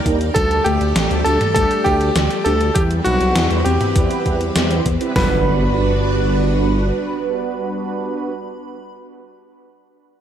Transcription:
0.00 5.12 G3 medium
0.00 0.34 G4 medium
0.00 0.33 A#4 loud
0.00 2.72 D5 medium
0.06 0.30 D#2 loud
0.06 0.16 G3 medium
0.06 0.16 A#3 medium
0.06 0.16 D4 medium
0.06 0.34 D#4 loud
0.06 0.16 D#4 medium
0.06 0.16 A#4 medium
0.06 kick medium
0.06 closed hi-hat medium
0.21 closed hi-hat soft
0.34 0.60 D2 loud
0.34 0.54 G3 medium
0.34 2.74 A3 medium
0.34 0.66 A4 loud
0.34 2.74 A4 loud
0.34 0.66 A5 loud
0.34 kick loud
0.34 closed hi-hat loud
0.51 closed hi-hat soft
0.64 0.78 D2 loud
0.64 0.76 A3 medium
0.64 0.84 A3 medium
0.64 0.76 D4 medium
0.64 1.21 G4 loud
0.64 0.76 G4 medium
0.64 1.21 G5 loud
0.64 closed hi-hat medium
0.81 0.93 D2 medium
0.81 closed hi-hat soft
0.96 1.08 A1 medium
0.96 1.14 G4 medium
0.96 snare loud
0.96 closed hi-hat loud
1.11 1.23 D2 loud
1.11 1.21 A3 medium
1.11 1.21 D4 medium
1.11 1.21 A4 loud
1.11 closed hi-hat soft
1.24 1.38 D2 medium
1.24 1.54 G4 loud
1.24 1.53 A4 loud
1.24 1.53 A5 loud
1.24 closed hi-hat medium
1.41 closed hi-hat soft
1.41 mid tom loud
1.54 1.68 D2 loud
1.54 1.74 G3 medium
1.54 1.97 A3 medium
1.54 1.97 D4 medium
1.54 1.97 G4 loud
1.54 1.86 A4 loud
1.54 1.86 A5 loud
1.54 kick loud
1.54 closed hi-hat medium
1.71 closed hi-hat soft
1.84 2.10 D2 loud
1.84 2.04 A3 medium
1.84 2.47 G4 loud
1.84 2.47 G5 loud
1.84 kick medium
1.84 closed hi-hat soft
2.01 2.11 A3 medium
2.01 2.11 D4 medium
2.01 2.11 G4 medium
2.01 closed hi-hat soft
2.16 2.28 D2 loud
2.16 2.34 G4 medium
2.16 snare loud
2.16 closed hi-hat medium
2.31 closed hi-hat soft
2.44 2.71 D2 medium
2.44 2.56 A3 medium
2.44 2.56 D4 medium
2.44 2.56 G4 medium
2.44 2.74 G4 loud
2.44 2.76 A4 loud
2.44 2.76 A5 loud
2.44 closed hi-hat medium
2.61 closed hi-hat soft
2.74 3.00 E2 loud
2.74 2.94 E3 medium
2.74 5.13 C4 medium
2.74 5.13 E4 medium
2.74 2.82 G4 loud
2.74 5.13 B4 loud
2.74 2.88 G5 loud
2.74 kick loud
2.74 closed hi-hat medium
2.91 closed hi-hat soft
3.04 3.18 B1 loud
3.04 3.24 G3 medium
3.04 3.16 G3 medium
3.04 3.16 B3 medium
3.04 3.16 C4 medium
3.04 3.16 E4 medium
3.04 3.61 F#4 loud
3.04 3.16 B4 medium
3.04 3.61 F#5 loud
3.04 closed hi-hat medium
3.21 3.33 B1 loud
3.21 closed hi-hat soft
3.36 3.48 E2 loud
3.36 3.54 C4 medium
3.36 snare loud
3.36 closed hi-hat loud
3.51 3.63 E2 medium
3.51 3.61 G3 medium
3.51 3.61 B3 medium
3.51 3.61 C4 medium
3.51 3.61 E4 medium
3.51 3.61 C5 loud
3.51 closed hi-hat soft
3.64 3.78 E2 loud
3.64 3.94 C4 loud
3.64 4.81 G4 medium
3.64 4.81 G5 medium
3.64 closed hi-hat medium
3.81 closed hi-hat soft
3.81 mid tom loud
3.96 4.08 E2 medium
3.96 4.14 E3 medium
3.96 4.23 G3 medium
3.96 4.23 B3 medium
3.96 4.23 C4 medium
3.96 4.23 E4 medium
3.96 4.23 B4 loud
3.96 kick loud
3.96 closed hi-hat loud
4.11 closed hi-hat soft
4.26 4.50 E2 medium
4.26 4.44 E3 medium
4.26 4.36 G3 medium
4.26 4.36 B3 medium
4.26 4.36 C4 medium
4.26 4.36 E4 medium
4.26 4.36 B4 loud
4.26 kick medium
4.26 closed hi-hat soft
4.41 closed hi-hat soft
4.56 4.81 E2 loud
4.56 4.84 G4 medium
4.56 snare loud
4.56 closed hi-hat loud
4.71 4.81 G3 medium
4.71 4.81 B3 medium
4.71 4.81 C4 medium
4.71 4.81 E4 medium
4.71 4.81 C5 medium
4.71 closed hi-hat soft
4.86 4.98 E2 medium
4.86 4.97 B3 loud
4.86 kick medium
4.86 closed hi-hat medium
5.01 5.11 G3 loud
5.01 5.11 B3 medium
5.01 5.11 C4 medium
5.01 5.11 E4 medium
5.01 5.11 B4 loud
5.01 closed hi-hat soft
5.16 6.92 G1 loud
5.16 5.44 F#3 medium
5.16 8.32 G3 medium
5.16 8.32 B3 medium
5.16 8.32 D4 medium
5.16 8.32 F#4 medium
5.16 8.32 B4 loud
5.16 8.32 B4 medium
5.16 8.92 B5 medium
5.16 kick loud
5.16 snare loud
5.16 open hi-hat medium
5.16 impact medium

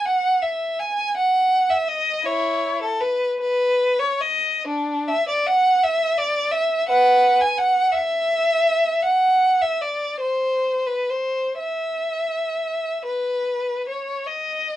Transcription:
0.06 0.42 F#5 medium
0.42 0.79 E5 medium
0.79 1.16 G#5 medium
1.17 1.70 F#5 medium
1.70 1.88 E5 medium
1.88 2.26 D#5 medium
2.25 2.78 E4 medium
2.25 2.82 C#5 medium
2.82 3.01 A4 medium
3.01 3.39 B4 medium
3.40 3.99 B4 medium
3.99 4.22 C#5 medium
4.21 4.67 D#5 medium
4.67 5.08 D4 medium
5.08 5.28 E5 medium
5.29 5.47 D5 medium
5.47 5.84 F#5 medium
5.84 6.19 E5 medium
6.18 6.53 D5 medium
6.51 6.88 E5 medium
6.89 7.38 B4 medium
6.89 7.40 F#5 medium
7.41 7.59 G#5 medium
7.58 7.95 F#5 medium
7.92 9.02 E5 medium
9.02 9.60 F#5 medium
9.62 9.80 E5 medium
9.82 10.21 D5 medium
10.21 10.85 C5 medium
10.87 11.10 B4 soft
11.10 11.60 C5 medium
11.59 13.02 E5 medium
13.06 13.85 B4 medium
13.89 14.25 C#5 soft
14.27 14.77 D#5 medium

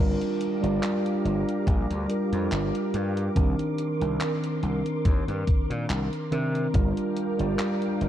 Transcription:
0.00 0.16 G1 medium
0.00 0.57 G3 medium
0.00 0.58 D4 medium
0.00 0.58 F4 medium
0.00 3.33 G4 medium
0.00 0.58 A#4 loud
0.00 3.33 F5 medium
0.00 3.33 A#5 medium
0.00 6.70 D6 medium
0.21 closed hi-hat soft
0.41 closed hi-hat medium
0.61 0.78 G1 medium
0.61 2.04 G3 medium
0.61 2.04 D4 medium
0.61 2.05 F4 medium
0.61 2.05 D5 loud
0.61 closed hi-hat soft
0.83 clap loud
0.83 closed hi-hat medium
1.06 closed hi-hat soft
1.25 1.43 G1 medium
1.25 closed hi-hat soft
1.49 closed hi-hat soft
1.67 1.85 A#1 medium
1.67 kick loud
1.67 closed hi-hat medium
1.90 2.05 D2 medium
1.90 closed hi-hat soft
2.08 3.31 G3 medium
2.08 3.31 D4 medium
2.08 3.32 F4 medium
2.08 3.32 A#4 medium
2.08 closed hi-hat medium
2.33 2.48 F2 medium
2.33 closed hi-hat soft
2.52 2.70 G1 medium
2.52 clap loud
2.52 closed hi-hat loud
2.75 closed hi-hat soft
2.94 3.28 G2 medium
2.94 closed hi-hat medium
3.17 closed hi-hat soft
3.35 3.54 C2 medium
3.35 3.95 D#3 loud
3.35 3.96 C4 medium
3.35 3.96 D4 medium
3.35 8.09 A#4 medium
3.35 3.96 A#4 loud
3.35 6.71 C6 medium
3.35 kick loud
3.35 closed hi-hat medium
3.59 closed hi-hat soft
3.78 closed hi-hat medium
4.00 4.17 C2 medium
4.00 6.27 D#3 medium
4.00 6.27 C4 medium
4.00 6.27 D4 medium
4.00 6.28 A#4 medium
4.00 closed hi-hat soft
4.21 clap loud
4.21 closed hi-hat loud
4.44 closed hi-hat soft
4.63 4.81 C2 medium
4.63 closed hi-hat soft
4.86 closed hi-hat soft
5.05 5.23 D#2 medium
5.05 kick loud
5.05 closed hi-hat loud
5.28 5.43 G2 medium
5.28 closed hi-hat soft
5.47 kick loud
5.47 closed hi-hat medium
5.70 5.86 A#2 medium
5.70 closed hi-hat soft
5.90 6.08 C2 medium
5.90 clap loud
5.90 closed hi-hat loud
6.13 closed hi-hat soft
6.31 6.66 C3 loud
6.31 6.69 D#3 medium
6.31 6.70 C4 medium
6.31 6.70 D4 medium
6.31 6.70 A#4 medium
6.31 closed hi-hat medium
6.55 closed hi-hat soft
6.74 6.92 G1 medium
6.74 7.34 G3 medium
6.74 7.34 D4 medium
6.74 7.34 F4 medium
6.74 7.35 A#4 loud
6.74 8.09 F5 medium
6.74 8.09 G5 medium
6.74 8.09 D6 medium
6.74 kick loud
6.74 closed hi-hat loud
6.97 closed hi-hat soft
7.17 closed hi-hat medium
7.38 7.55 G1 medium
7.38 8.09 G3 medium
7.38 8.09 D4 medium
7.38 8.09 F4 medium
7.38 8.09 D5 loud
7.38 closed hi-hat soft
7.59 clap loud
7.59 closed hi-hat loud
7.82 closed hi-hat soft
8.01 8.09 G1 medium
8.01 closed hi-hat soft

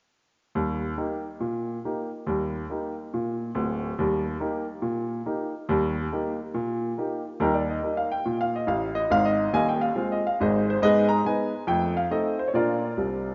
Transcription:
0.55 0.92 D#2 medium
0.55 0.80 G3 soft
0.98 1.21 A#3 soft
0.98 1.22 D#4 soft
0.98 1.22 G4 soft
1.40 1.77 A#2 medium
1.85 2.08 A#3 soft
1.85 2.08 D#4 soft
1.85 2.09 G4 soft
2.27 2.63 D#2 medium
2.27 2.52 G3 soft
2.70 2.93 A#3 soft
2.70 2.94 D#4 soft
2.70 2.94 G4 soft
3.14 3.50 A#2 medium
3.55 3.89 D1 medium
3.55 3.89 D2 medium
3.99 4.35 D#2 medium
3.99 4.23 G3 medium
4.40 4.64 A#3 soft
4.40 4.64 D#4 soft
4.40 4.65 G4 soft
4.82 5.19 A#2 medium
5.26 5.50 A#3 soft
5.26 5.50 D#4 soft
5.26 5.50 G4 soft
5.69 6.05 D#2 medium
5.69 5.94 G3 medium
6.12 6.36 A#3 soft
6.12 6.36 D#4 soft
6.12 6.36 G4 soft
6.54 6.91 A#2 medium
6.98 7.21 A#3 soft
6.98 7.22 D#4 soft
6.98 7.22 G4 soft
7.40 7.77 D#2 medium
7.40 7.65 G3 soft
7.40 7.55 D#4 medium
7.40 7.55 G4 medium
7.40 7.53 A#4 medium
7.54 7.67 D5 medium
7.70 7.94 D#5 medium
7.83 8.07 A#3 soft
7.83 8.07 D#4 soft
7.83 8.07 G4 soft
7.97 8.10 F5 medium
8.12 8.36 G5 medium
8.26 8.62 A#2 medium
8.41 8.53 F5 medium
8.56 8.67 D#5 medium
8.67 9.02 A1 medium
8.67 9.02 A2 medium
8.67 8.92 F5 medium
8.95 9.09 D#5 medium
9.10 9.45 G#1 medium
9.10 9.46 G#2 medium
9.10 9.25 F5 loud
9.25 9.50 D#5 medium
9.53 9.88 D#1 medium
9.53 9.88 D#2 medium
9.53 9.68 D#5 medium
9.53 9.68 F5 medium
9.53 9.66 G#5 loud
9.69 9.81 G5 medium
9.81 10.06 F5 medium
9.96 10.20 G#3 soft
9.96 10.20 C4 medium
9.96 10.19 F4 soft
10.12 10.24 D#5 medium
10.27 10.38 F5 medium
10.40 10.75 G#1 medium
10.40 10.74 G#2 medium
10.40 10.68 G#4 soft
10.40 10.68 C5 medium
10.40 10.65 D#5 medium
10.70 10.81 C5 medium
10.82 11.19 G#2 medium
10.82 11.08 B3 medium
10.82 11.09 G#4 medium
10.82 11.09 B4 medium
10.82 11.06 D#5 loud
11.09 11.22 A#5 medium
11.25 11.48 G#3 soft
11.25 11.49 B3 soft
11.25 11.50 D#4 soft
11.25 11.66 B4 soft
11.25 11.66 D#5 medium
11.25 11.62 G#5 medium
11.67 12.04 F2 medium
11.67 11.93 A3 soft
11.67 11.92 G5 medium
11.97 12.09 F5 medium
12.11 12.34 A3 soft
12.11 12.35 C4 soft
12.11 12.35 D#4 soft
12.11 12.37 A4 medium
12.11 12.38 C5 medium
12.11 12.35 D#5 medium
12.39 12.48 C5 medium
12.48 12.53 C#5 soft
12.54 12.90 A#2 medium
12.54 12.79 D4 soft
12.54 13.35 F4 medium
12.54 13.35 A#4 medium
12.54 13.35 D5 medium
12.97 13.29 C2 soft
12.97 13.29 C3 soft

